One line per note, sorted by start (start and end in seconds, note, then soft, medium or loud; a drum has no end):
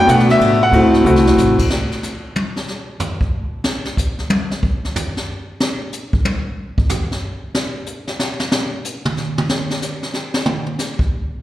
0.07 0.39 B2 loud
0.07 0.57 A3 medium
0.07 0.57 B3 medium
0.07 0.57 D4 medium
0.07 0.57 F#4 medium
0.07 0.29 F#5 medium
0.07 hi-hat pedal medium
0.07 ride medium
0.19 snare soft
0.29 0.60 E5 loud
0.29 snare soft
0.29 ride medium
0.39 0.71 A2 medium
0.39 ride medium
0.63 1.03 F#5 loud
0.71 1.04 D2 medium
0.71 1.03 A3 medium
0.71 1.03 C4 medium
0.71 1.04 E4 medium
0.71 1.05 F#4 medium
0.71 ride medium
0.94 snare soft
1.05 1.36 C2 medium
1.05 1.54 A3 medium
1.05 1.54 C4 medium
1.05 1.55 E4 medium
1.05 1.55 F#4 medium
1.05 hi-hat pedal medium
1.16 snare medium
1.27 snare loud
1.37 1.57 A1 medium
1.37 snare medium
1.37 hi-hat pedal medium
1.59 muted upright bass stroke soft
1.59 kick medium
1.59 crash medium
1.70 snare medium
1.91 snare soft
2.03 snare soft
2.03 hi-hat pedal medium
2.36 high tom loud
2.56 snare soft
2.68 snare soft
3.00 floor tom loud
3.00 hi-hat pedal medium
3.21 kick medium
3.64 snare loud
3.85 snare medium
3.97 kick medium
3.97 hi-hat pedal medium
4.19 snare soft
4.30 high tom loud
4.51 snare medium
4.63 kick medium
4.85 snare soft
4.96 floor tom loud
4.96 hi-hat pedal medium
5.17 snare soft
5.60 snare loud
5.92 hi-hat pedal medium
6.13 kick medium
6.25 high tom loud
6.78 kick medium
6.90 floor tom loud
6.90 hi-hat pedal medium
7.12 snare soft
7.55 snare loud
7.86 hi-hat pedal medium
8.08 snare medium
8.20 snare loud
8.40 snare loud
8.52 snare loud
8.85 hi-hat pedal medium
9.05 mid tom loud
9.17 snare soft
9.38 mid tom loud
9.49 snare loud
9.70 snare soft
9.82 snare soft
9.82 hi-hat pedal medium
10.03 snare soft
10.14 snare soft
10.34 snare loud
10.46 mid tom loud
10.66 mid tom soft
10.79 snare medium
10.79 hi-hat pedal medium
10.99 kick medium